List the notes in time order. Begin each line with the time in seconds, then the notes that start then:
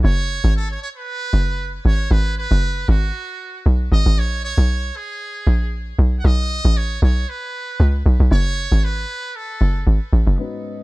0.04 F#1 C#5
0.44 G#1
0.56 A4
0.71 C#5
0.82 C#5
0.96 B4
1.33 F#1
1.85 G#1 C#5
2.11 G#1 B4
2.37 B4
2.51 F#1
2.88 G#1 F#4
3.66 B1
3.92 G#1 D#5
4.06 G#1
4.17 A#1 C#5
4.44 C#5
4.58 B1
4.96 G#4
5.47 A#1
5.99 B1
6.19 F#5
6.24 B1 D#5
6.65 A1
6.77 C#5
7.02 B1 C#5
7.29 B4
7.80 C#2
8.06 B1
8.20 B1
8.31 F#1 C#5
8.72 G#1
8.84 B4
9.36 A4
9.61 F#1
9.87 G#1
10.13 A1
10.27 F#1
10.38 G#2 B3 C#4 D#4 F#4 B4 D#5